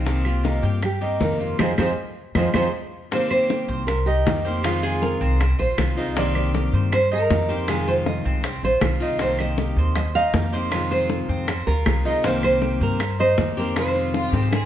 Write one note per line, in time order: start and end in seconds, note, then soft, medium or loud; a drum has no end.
0.00 0.58 C2 medium
0.00 0.26 D#4 medium
0.05 0.24 C3 medium
0.05 0.24 D#3 medium
0.05 0.25 A#3 medium
0.05 0.43 C4 medium
0.05 0.25 C4 medium
0.05 0.24 G4 medium
0.05 high bongo medium
0.25 0.44 A#3 soft
0.25 0.44 C4 soft
0.25 0.79 F4 medium
0.25 0.44 G4 medium
0.25 claves medium
0.43 0.62 C3 medium
0.43 0.63 D#3 medium
0.43 0.63 A#3 medium
0.43 0.63 C4 medium
0.43 0.63 D#4 medium
0.43 0.61 G4 medium
0.43 high bongo medium
0.63 1.17 G2 medium
0.63 0.82 A#3 soft
0.63 0.82 C4 soft
0.63 0.82 G4 soft
0.63 1.00 G4 medium
0.63 high bongo soft
0.82 1.19 G4 medium
0.82 muted steel-string acoustic guitar stroke medium
0.82 high bongo medium
0.82 claves medium
1.01 1.20 A#3 soft
1.01 1.20 C4 soft
1.01 1.39 D#4 medium
1.01 1.20 G4 medium
1.01 high bongo soft
1.20 1.56 F2 medium
1.20 1.58 C3 medium
1.20 1.58 D#3 medium
1.20 1.58 A#3 medium
1.20 1.58 C4 medium
1.20 1.59 G4 medium
1.20 1.60 A#4 medium
1.20 high bongo soft
1.20 low bongo medium
1.40 1.59 F4 medium
1.40 high bongo soft
1.59 1.73 F2 medium
1.59 1.72 F3 loud
1.59 1.71 G#3 medium
1.59 1.72 C4 medium
1.59 1.72 D#4 medium
1.59 1.72 F4 loud
1.59 1.72 F4 medium
1.59 1.72 G#4 medium
1.59 1.72 C5 medium
1.59 low bongo medium
1.59 claves medium
1.78 1.92 F2 medium
1.78 1.91 F3 medium
1.78 1.91 G#3 medium
1.78 1.90 C4 medium
1.78 1.91 D#4 medium
1.78 1.91 F4 medium
1.78 1.91 G#4 medium
1.78 1.92 C5 medium
1.78 low bongo medium
1.78 claves medium
2.35 2.49 F2 medium
2.35 2.48 F3 medium
2.35 2.48 G#3 medium
2.35 2.48 C4 medium
2.35 2.48 D#4 medium
2.35 2.48 F4 medium
2.35 2.49 G#4 medium
2.35 2.48 C5 medium
2.35 low bongo medium
2.35 claves medium
2.54 2.69 F2 medium
2.54 2.67 F3 medium
2.54 2.67 G#3 medium
2.54 2.67 C4 loud
2.54 2.67 C4 medium
2.54 2.67 D#4 medium
2.54 2.67 F4 loud
2.54 2.67 G#4 loud
2.54 2.67 C5 medium
2.54 low bongo medium
2.54 claves medium
3.11 3.87 C3 medium
3.11 3.87 D#3 medium
3.11 3.88 A#3 medium
3.11 3.49 C4 medium
3.11 3.89 C4 medium
3.11 3.88 G4 medium
3.11 3.30 C5 medium
3.11 high bongo medium
3.31 3.87 C5 medium
3.31 claves medium
3.49 3.68 G4 medium
3.49 high bongo medium
3.68 4.22 C2 medium
3.68 4.06 C5 medium
3.87 4.07 A#4 medium
3.87 muted steel-string acoustic guitar stroke medium
3.87 high bongo medium
3.87 claves medium
4.06 4.44 D#4 medium
4.06 4.64 G4 medium
4.25 5.15 F2 medium
4.25 4.44 D#3 soft
4.25 4.44 A#3 soft
4.25 4.44 C4 soft
4.25 4.43 G4 medium
4.25 high bongo medium
4.25 low bongo medium
4.44 4.63 D#3 medium
4.44 4.64 A#3 medium
4.44 4.63 C4 medium
4.44 4.63 G4 medium
4.44 4.82 C5 medium
4.63 5.39 C3 medium
4.63 5.39 D#3 medium
4.63 5.40 G#3 medium
4.63 5.40 C4 medium
4.63 4.83 F4 medium
4.63 5.40 F4 medium
4.63 high bongo medium
4.63 claves medium
4.83 5.20 F4 medium
4.83 5.03 G#4 medium
4.83 high bongo soft
5.02 5.37 A#4 medium
5.02 high bongo medium
5.21 5.56 C2 medium
5.21 5.58 C4 medium
5.40 muted steel-string acoustic guitar stroke medium
5.40 high bongo medium
5.40 claves medium
5.59 5.77 A#1 medium
5.59 5.96 F4 medium
5.59 6.17 C5 loud
5.59 high bongo soft
5.77 6.67 C2 medium
5.77 5.96 D#3 soft
5.77 5.97 G#3 soft
5.77 5.97 C4 soft
5.77 5.96 F4 medium
5.77 high bongo medium
5.77 low bongo medium
5.77 claves medium
5.97 6.15 D#3 medium
5.97 6.16 G#3 medium
5.97 6.16 C4 medium
5.97 6.16 D#4 medium
5.97 6.15 F4 medium
5.97 high bongo soft
6.16 6.91 C3 medium
6.16 6.91 D#3 medium
6.16 6.91 A#3 medium
6.16 6.53 C4 medium
6.16 6.93 C4 medium
6.16 6.92 G4 medium
6.16 6.35 D5 medium
6.16 high bongo medium
6.35 6.93 D5 medium
6.35 claves medium
6.54 6.73 G4 medium
6.54 high bongo medium
6.73 7.26 G2 medium
6.73 7.10 C5 medium
6.92 7.12 C5 loud
6.92 muted steel-string acoustic guitar stroke medium
6.92 high bongo medium
6.92 claves medium
7.12 7.48 D#4 medium
7.12 7.71 A#4 loud
7.29 8.19 F2 medium
7.29 7.48 D#3 medium
7.29 7.48 A#3 medium
7.29 7.49 C4 soft
7.29 7.47 G4 soft
7.29 high bongo medium
7.29 low bongo medium
7.49 7.68 D#3 medium
7.49 7.68 A#3 medium
7.49 7.68 C4 medium
7.49 7.67 G4 medium
7.49 7.86 C5 medium
7.68 8.43 C3 medium
7.68 8.43 D#3 medium
7.68 8.44 G#3 medium
7.68 8.45 C4 medium
7.68 8.44 F4 medium
7.68 7.88 G#4 medium
7.68 high bongo medium
7.68 claves medium
7.87 8.24 F4 medium
7.87 7.93 C5 loud
7.87 high bongo soft
8.06 8.42 D#5 medium
8.06 high bongo medium
8.25 8.60 C2 medium
8.25 8.62 C4 medium
8.44 muted steel-string acoustic guitar stroke medium
8.44 high bongo medium
8.44 claves medium
8.63 8.80 A#1 medium
8.63 9.00 F4 medium
8.63 9.20 C5 loud
8.63 high bongo soft
8.81 9.71 C2 medium
8.81 9.00 D#3 soft
8.81 9.00 G#3 soft
8.81 9.00 C4 soft
8.81 8.99 F4 medium
8.81 high bongo medium
8.81 low bongo medium
8.81 claves medium
9.00 9.19 D#3 medium
9.00 9.19 G#3 medium
9.00 9.19 C4 medium
9.00 9.20 D#4 medium
9.00 9.19 F4 medium
9.00 high bongo soft
9.19 9.94 C3 medium
9.19 9.95 D#3 medium
9.19 9.95 A#3 medium
9.19 9.57 C4 medium
9.19 9.96 C4 medium
9.19 9.96 G4 medium
9.19 9.40 C5 medium
9.19 high bongo medium
9.39 9.93 D#5 loud
9.39 claves medium
9.58 9.77 G4 medium
9.58 high bongo medium
9.76 10.30 D#2 medium
9.76 10.14 C5 medium
9.96 10.15 D#5 loud
9.96 muted steel-string acoustic guitar stroke medium
9.96 high bongo medium
9.96 claves medium
10.15 10.52 D#4 medium
10.15 10.53 F5 loud
10.33 11.23 F2 medium
10.33 10.52 D#3 soft
10.33 10.52 A#3 soft
10.33 10.52 C4 soft
10.33 10.51 G4 medium
10.33 high bongo medium
10.33 low bongo medium
10.52 10.71 D#3 medium
10.52 10.72 A#3 medium
10.52 10.71 C4 medium
10.52 10.71 G4 medium
10.52 10.90 C5 medium
10.52 10.91 D#5 medium
10.71 11.46 C3 medium
10.71 11.47 D#3 medium
10.71 11.48 G#3 medium
10.71 11.48 C4 medium
10.71 11.48 F4 medium
10.71 high bongo medium
10.71 claves medium
10.91 11.28 F4 medium
10.91 11.67 C5 loud
10.91 high bongo soft
11.10 high bongo medium
11.28 11.64 F2 medium
11.28 11.66 C4 medium
11.48 muted steel-string acoustic guitar stroke medium
11.48 high bongo medium
11.48 claves medium
11.67 11.85 D2 medium
11.67 12.04 F4 medium
11.67 12.24 A#4 loud
11.67 high bongo soft
11.85 12.75 C2 medium
11.85 12.04 D#3 soft
11.85 12.05 G#3 medium
11.85 12.04 C4 soft
11.85 12.04 F4 medium
11.85 high bongo medium
11.85 low bongo medium
11.85 claves medium
12.05 12.23 D#3 medium
12.05 12.24 G#3 medium
12.05 12.24 C4 medium
12.05 12.24 D#4 medium
12.05 12.23 F4 medium
12.05 high bongo soft
12.23 12.99 C3 medium
12.23 12.99 D#3 medium
12.23 12.99 A#3 medium
12.23 12.61 C4 medium
12.23 13.00 C4 medium
12.23 13.00 G4 medium
12.23 12.42 C5 loud
12.23 high bongo medium
12.43 12.83 C5 loud
12.43 claves medium
12.62 12.80 G4 medium
12.62 high bongo medium
12.81 13.34 G2 medium
12.81 13.20 A#4 medium
12.81 13.18 C5 medium
13.00 muted steel-string acoustic guitar stroke medium
13.00 high bongo medium
13.00 claves medium
13.19 13.56 D#4 medium
13.19 13.59 C5 loud
13.37 14.27 F2 medium
13.37 13.56 D#3 soft
13.37 13.57 A#3 soft
13.37 13.57 C4 soft
13.37 13.56 G4 medium
13.37 high bongo medium
13.37 low bongo medium
13.57 13.75 D#3 medium
13.57 13.76 A#3 medium
13.57 13.76 C4 medium
13.57 13.75 G4 medium
13.57 13.78 A#4 medium
13.57 13.94 C5 medium
13.75 14.51 C3 medium
13.75 14.51 D#3 medium
13.75 14.52 G#3 medium
13.75 14.52 C4 medium
13.75 14.52 F4 medium
13.75 14.53 C5 loud
13.75 high bongo medium
13.75 claves medium
13.95 14.32 F4 medium
13.95 high bongo soft
14.14 14.32 F4 loud
14.14 high bongo medium
14.32 14.65 G#2 loud
14.32 14.65 C4 medium
14.32 14.52 G4 medium
14.32 high bongo medium
14.51 14.65 G#4 medium
14.51 14.65 A#4 loud
14.51 muted steel-string acoustic guitar stroke medium
14.51 high bongo medium
14.51 claves medium